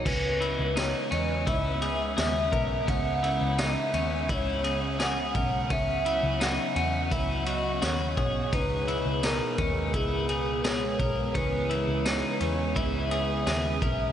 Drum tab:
CC |x-------|--------|--------|--------|
RD |-xxxxxxx|xxxxxxxx|xxxxxxxx|xxxxxxxx|
TB |--x---x-|--x---x-|--x---x-|--x---x-|
SD |--o---o-|--o---o-|--o---o-|--o---o-|
BD |o---o--o|o---o--o|o---o--o|o--oo--o|

CC |--------|
RD |xxxxxxxx|
TB |--x---x-|
SD |--o---o-|
BD |o---o--o|